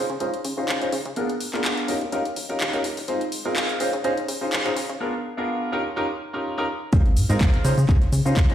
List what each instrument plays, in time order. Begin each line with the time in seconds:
0.10 analog synth bass C#3, closed hi-hat
0.20 analog synth bass C#2, grand piano C#4 D#4 F4 G#4 C5, closed hi-hat
0.34 closed hi-hat
0.44 analog synth bass C#3, open hi-hat
0.57 analog synth bass C#3, grand piano C#4 D#4 F4 G#4 C5
0.68 analog synth bass C#2, clap, closed hi-hat
0.81 grand piano C#4 D#4 F4 G#4 C5, closed hi-hat
0.92 analog synth bass C#3, open hi-hat
1.05 analog synth bass C#3, closed hi-hat
1.16 analog synth bass A#1, grand piano B3 D4 F4 G#4 A#4, closed hi-hat
1.29 closed hi-hat
1.40 analog synth bass A#2, open hi-hat
1.53 analog synth bass A#2, grand piano B3 D4 F4 G#4 A#4, clap
1.64 analog synth bass A#1, clap, closed hi-hat
1.77 closed hi-hat
1.88 analog synth bass D#1, grand piano C#4 D#4 F4 G4 A#4, open hi-hat
2.01 analog synth bass D#1, closed hi-hat
2.12 analog synth bass D#2, grand piano C#4 D#4 F4 G4 A#4, closed hi-hat
2.25 closed hi-hat
2.36 analog synth bass D#1, open hi-hat
2.49 analog synth bass D#1, grand piano C#4 D#4 F4 G4 A#4, closed hi-hat
2.60 analog synth bass D#2, clap, closed hi-hat
2.73 grand piano C#4 D#4 F4 G4 A#4, closed hi-hat
2.84 analog synth bass D#1, open hi-hat
2.97 analog synth bass D#1, open hi-hat
3.08 analog synth bass G#1, grand piano C4 D#4 F4 G#4 C5, closed hi-hat
3.21 closed hi-hat
3.32 analog synth bass G#2, open hi-hat
3.45 analog synth bass G#2, grand piano C4 D#4 F4 G#4 A#4, closed hi-hat
3.56 analog synth bass G#1, clap, closed hi-hat
3.69 closed hi-hat
3.80 analog synth bass C#3, grand piano C#4 D#4 F4 G#4 C5, open hi-hat
3.93 analog synth bass C#3, closed hi-hat
4.04 analog synth bass C#2, grand piano C#4 D#4 F4 G#4 C5, closed hi-hat
4.17 closed hi-hat
4.28 analog synth bass C#3, open hi-hat
4.41 analog synth bass C#3, grand piano C#4 D#4 F4 G#4 C5
4.52 analog synth bass C#2, clap, closed hi-hat
4.65 grand piano C#4 D#4 F4 G#4 C5, closed hi-hat
4.76 analog synth bass C#3, open hi-hat
4.89 analog synth bass C#3, closed hi-hat
5.00 grand piano B3 D4 F4 G#4 A#4
5.37 grand piano B3 D4 F4 G#4 A#4
5.72 grand piano C#4 D#4 F4 G4 A#4
5.96 grand piano C#4 D#4 F4 G4 A#4
6.33 grand piano C#4 D#4 F4 G4 A#4
6.57 grand piano C#4 D#4 F4 G4 A#4
6.92 analog synth bass G#1, grand piano C4 D#4 F4 G#4 C5, kick, closed hi-hat, shaker
7.06 closed hi-hat
7.17 analog synth bass G#2, open hi-hat, shaker
7.29 analog synth bass G#2, grand piano C4 D#4 F4 G#4 A#4, closed hi-hat, shaker
7.41 analog synth bass G#1, kick, clap, closed hi-hat, shaker
7.54 closed hi-hat
7.64 analog synth bass C#3, grand piano C#4 D#4 F4 G#4 C5, open hi-hat, shaker
7.78 analog synth bass C#3, closed hi-hat, shaker
7.88 analog synth bass C#2, grand piano C#4 D#4 F4 G#4 C5, kick, clap, closed hi-hat, shaker
8.02 closed hi-hat
8.12 analog synth bass C#3, open hi-hat, shaker
8.25 analog synth bass C#3, grand piano C#4 D#4 F4 G#4 C5, shaker
8.37 analog synth bass C#2, kick, clap, closed hi-hat, shaker
8.49 grand piano C#4 D#4 F4 G#4 C5, closed hi-hat